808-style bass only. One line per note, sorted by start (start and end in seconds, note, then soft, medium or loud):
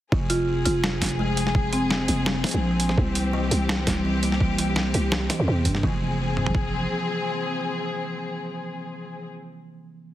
0.12 0.65 F1 loud
0.66 1.00 F1 medium
1.02 2.07 F1 loud
2.09 2.43 F1 medium
2.54 2.97 A#1 medium
2.98 3.50 C2 loud
3.51 3.86 C2 medium
3.87 4.93 C2 loud
4.95 5.29 C2 medium
5.40 5.47 E2 medium
5.48 5.67 E2 medium
5.66 5.82 G2 medium
5.83 6.87 F1 loud